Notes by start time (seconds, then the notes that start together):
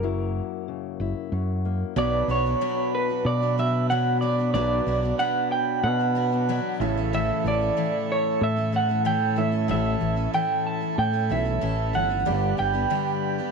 Already playing: F#1 F#2 A#3 A#4
0.03 F#3 E4
0.68 C#3
1.00 F#1 E4
1.32 F#2 F#3
1.65 A#3
1.96 B1 B2 F#3 B3 D4 F#4 B4 D5 B5
2.28 B1 F#3 B3 D4 F#4 C#5
2.46 B3 D4 F#4
2.61 B2 F#3 B3 D4 F#4
2.95 B4
3.09 B3 D4 F#4
3.25 B2 D5
3.42 B3 D4 F#4
3.58 F#3 B3 D4 F#4 E5
3.90 B2 F#3 B3 D4 F#4 F#5
4.21 F#3 B3 D4 F#4 D5
4.39 B3 D4 F#4
4.54 B1 B2 F#3 B3 D4 F#4 B4 D5
4.86 B1 F#3 B3 D4 F#4
5.03 B3 D4 F#4
5.19 B2 F#3 B3 D4 F#5
5.52 G5
5.83 B2 F#5
5.99 B3 D4 F#4
6.15 F#3 B3 D4 F#4
6.32 B3 D4 F#4
6.49 B2 F#3 B3 D4 F#4
6.79 A1 A2 C#3 E3 A3 C#4 E4 A4 E5 A5
6.97 A3 C#4 A4
7.13 A2 E3 A3 C#4 A4 E5
7.44 A1 E3 A3 C#4 A4 D5
7.61 A3 C#4 A4
7.77 A2 E3 A3 A4
8.12 C#5
8.41 A2 E5
8.56 A3 C#4 A4
8.72 E3 A3 C#4 A4 F#5
8.89 A3 C#4 A4
9.05 A2 E3 A3 C#4 A4 G5
9.36 A1 A2 E3 A3 C#4 E4 A4 C#5 E5
9.52 A3 C#4 A4
9.68 A1 A2 E3 A3 C#4 A4 E5
10.01 A1 E3 A3 C#4 A4
10.16 A3 C#4 A4
10.33 A2 E3 A3 C#4 A4 G5
10.67 A5
10.81 A3 C#4 A4
10.98 A2 G5
11.13 A3 C#4 A4
11.29 B1 E3 A3 C#4 E4 A4 C#5 E5
11.45 A3 C#4 A4
11.61 A1 A2 E3 A3 C#4 A4
11.93 G1 E3 A3 C#4 A4 F#5
12.09 A3 C#4 A4
12.25 G1 G2 D3 G3 B3 D4 G4 B4 D5 B5
12.57 G1 G3 B3 D4 G4 G5
12.73 G3 B3 D4 G4
12.90 G2 D3 G3 B3 D4 G4
13.38 G3 B3 D4 G4